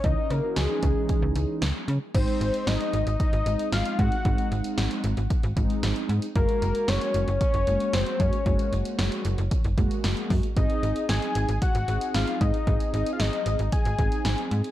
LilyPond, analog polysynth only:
\new Staff \with { instrumentName = "Analog polysynth" } { \time 4/4 \key aes \mixolydian \tempo 4 = 114 <fes des' ees'>8. <fes des' ges'>8 <fes des' ees'>4.~ <fes des' ees'>16 r4 | <aes c' ees'>4.~ <aes c' ees'>16 r8. <aes c' ees'>4~ <aes c' ees'>16 r16 | <aes c' ees'>4.~ <aes c' ees'>16 r8. <aes c' ees'>4~ <aes c' ees'>16 r16 | <aes bes ges'>4.~ <aes bes ges'>16 r8. <aes bes ges'>4~ <aes bes ges'>16 r16 |
<aes bes ges'>4.~ <aes bes ges'>16 r8. <aes bes ges'>4~ <aes bes ges'>16 r16 | <c' ees' aes'>4.~ <c' ees' aes'>16 r8. <c' ees' aes'>4~ <c' ees' aes'>16 r16 | <c' ees' aes'>4.~ <c' ees' aes'>16 r8. <c' ees' aes'>4~ <c' ees' aes'>16 r16 | }